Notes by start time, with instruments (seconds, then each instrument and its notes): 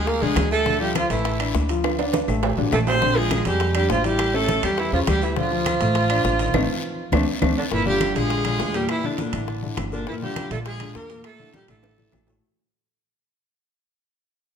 Already playing: upright bass D2, grand piano G#3 G#4
0.07 tenor saxophone A#3, viola A#4, high bongo, high conga, long guiro
0.21 upright bass C#2, grand piano D3 D4, tenor saxophone G#3, viola G#4, high bongo, high conga
0.36 upright bass D2, grand piano G#3 G#4, high bongo, low bongo, high conga, high timbale, low timbale, short guiro, claves
0.51 tenor saxophone A3, viola A4, high bongo, high conga, short guiro
0.66 grand piano D3 D4, high bongo, high conga, long guiro
0.80 grand piano F3 F4, tenor saxophone G3, viola G4, high bongo, high conga
0.95 tenor saxophone F3, viola F4, high bongo, high conga, high timbale, short guiro, claves
1.10 upright bass A1, tenor saxophone E3, grand piano A3 A4, viola E4, high bongo, high conga, high timbale, short guiro
1.25 high bongo, high conga, high timbale, long guiro
1.40 grand piano D4 D5, high bongo, high conga, high timbale, claves
1.54 upright bass D2, high bongo, low bongo, high conga, short guiro
1.69 grand piano F3 F4, high conga, high timbale, short guiro
1.84 high bongo, high conga, high timbale, long guiro, claves
1.99 grand piano D4 D5, high bongo, high conga, high timbale
2.13 high bongo, high conga, high timbale, short guiro
2.28 upright bass A1, grand piano A3 A4, low timbale, short guiro, claves
2.43 high bongo, high conga, low timbale, long guiro
2.57 upright bass A1, grand piano D3 D4, high bongo, high conga, low timbale
2.72 upright bass A#1, grand piano A3 A4, tenor saxophone A3, viola A4, high bongo, low bongo, high conga, low timbale, short guiro, claves
2.87 tenor saxophone C4, viola C5, high bongo, high conga, low timbale, short guiro
3.02 grand piano D3 D4, high bongo, long guiro
3.16 grand piano F3 F4, tenor saxophone G#3, viola G#4, high bongo, high conga
3.31 high bongo, high conga, high timbale, short guiro, claves
3.45 upright bass F2, tenor saxophone G3, grand piano G#3 G#4, viola G4, high bongo, high conga, high timbale, short guiro
3.60 high bongo, high conga, high timbale, long guiro
3.75 tenor saxophone G3, grand piano D4 D5, viola G4, high bongo, high conga, high timbale, claves
3.89 upright bass A1, tenor saxophone F3, viola F4, high bongo, low bongo, high conga, low timbale, short guiro
4.04 grand piano E3 E4, tenor saxophone G3, viola G4, high conga, high timbale, short guiro
4.19 high bongo, high conga, high timbale, long guiro, claves
4.34 tenor saxophone A3, grand piano C#4 C#5, viola A4, high bongo, high conga
4.48 high bongo, high conga, high timbale, short guiro
4.63 upright bass E2, grand piano G3 G4, tenor saxophone G3, viola G4, high timbale, short guiro, claves
4.78 tenor saxophone E3, viola E4, high bongo, high conga, long guiro
4.93 upright bass E2, grand piano C#3 C#4, tenor saxophone F3, viola F4, high bongo, high conga
5.07 upright bass D2, grand piano G3 G4, tenor saxophone G3, viola G4, high bongo, low bongo, high conga, high timbale, short guiro, claves
5.22 tenor saxophone E3, viola E4, high bongo, high conga, short guiro
5.36 grand piano D3 D4, tenor saxophone F3, viola F4, high bongo, high conga, long guiro
5.51 grand piano F3 F4, high bongo, high conga
5.66 high bongo, high conga, high timbale, short guiro, claves
5.80 upright bass A1, grand piano A3 A4, high bongo, high conga, high timbale, short guiro
5.95 high bongo, high conga, high timbale, long guiro
6.10 grand piano D4 D5, high bongo, high conga, high timbale, claves
6.24 upright bass A1, high bongo, low bongo, high conga, short guiro
6.39 grand piano D#3 D#4, high conga, high timbale, short guiro
6.54 upright bass A1, grand piano A3 C4 D#4, low bongo, high conga, high timbale, long guiro, claves
7.12 upright bass D2, grand piano A3 C4 D4, low bongo, high conga, high timbale, long guiro, claves
7.42 upright bass D2, grand piano A3 C4 D4, low bongo, high conga, high timbale, claves
7.57 tenor saxophone D3, viola D4
7.71 upright bass G1, grand piano A#2 A#3 A#4, tenor saxophone E3, viola E4, high bongo, high conga, long guiro
7.86 grand piano D3 D4 F4, tenor saxophone G3, viola G4, high bongo, high conga
8.01 high bongo, high conga, high timbale, short guiro, claves
8.15 upright bass A#1, grand piano D3 D4 F4, tenor saxophone G#3, viola G#4, high bongo, high conga, high timbale, short guiro
8.30 high bongo, high conga, high timbale, long guiro
8.45 grand piano D3 D4 F4, high bongo, high timbale, claves
8.59 upright bass E2, high bongo, low bongo, high conga, low timbale, short guiro
8.74 grand piano A#2 A#3 A#4, tenor saxophone G3, viola G4, high conga, high timbale, short guiro
8.89 tenor saxophone E3, viola E4, high bongo, high conga, high timbale, long guiro, claves
9.04 grand piano D3 D4 E4, tenor saxophone D3, viola D4, high bongo, high conga
9.18 grand piano A#2 A#3 A#4, high bongo, high conga, high timbale, short guiro
9.33 upright bass A1, grand piano D3 D4 E4, high timbale, short guiro, claves
9.48 high bongo, high conga, long guiro
9.63 grand piano D3 D4 E4, high bongo, high conga
9.77 upright bass G1, high bongo, low bongo, high conga, high timbale, low timbale, short guiro, claves
9.92 grand piano A#2 A#3 A#4, tenor saxophone D3, viola D4, high bongo, high conga, short guiro
10.07 grand piano A#2 A#3 A#4, tenor saxophone E3, viola E4, high bongo, high conga, long guiro
10.21 grand piano D3 D4 F4, tenor saxophone G3, viola G4, high bongo, high conga
10.36 high bongo, high conga, high timbale, short guiro, claves
10.51 upright bass A#1, grand piano D3 D4 F4, tenor saxophone A3, viola A4, high bongo, high conga, high timbale, short guiro
10.65 tenor saxophone G#3, viola G#4, high bongo, high conga, high timbale, long guiro
10.80 grand piano D3 D4 F4, high bongo, high conga, high timbale, claves
10.95 upright bass E2, tenor saxophone A#3, viola A#4, high bongo, low bongo, high conga, short guiro
11.10 grand piano A#2 A#3 A#4, high conga, high timbale, short guiro
11.24 tenor saxophone A3, viola A4, high bongo, high conga, high timbale, long guiro, claves
11.39 grand piano D3 D4 E4, high bongo, high conga
11.53 grand piano A#2 A#3 A#4, tenor saxophone G3, viola G4, high bongo, high conga, high timbale, short guiro
11.68 upright bass A1, grand piano D3 D4 E4, tenor saxophone A3, viola A4, high timbale, short guiro, claves
11.83 high bongo, high conga, high timbale, long guiro
11.98 grand piano D3 D4 E4, low bongo, high conga
12.12 upright bass A1, low bongo, high conga, low timbale, short guiro, claves
12.27 grand piano A2 A3 A4, low bongo, high conga, low timbale, short guiro